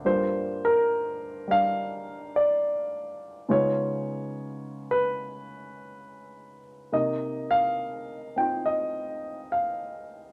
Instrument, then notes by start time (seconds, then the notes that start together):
grand piano
0.05 G2 G3 A#3 F4 C5
0.65 A#4
1.48 G3 D4 F5
2.36 D5
3.49 C#3 G#3 B3 C#4 D#4 F4 C#5
4.91 B4
6.92 C3 A#3 D#4 D#5
7.51 F5
8.36 C4 D#4 F4 G5
8.66 D#5
9.52 F5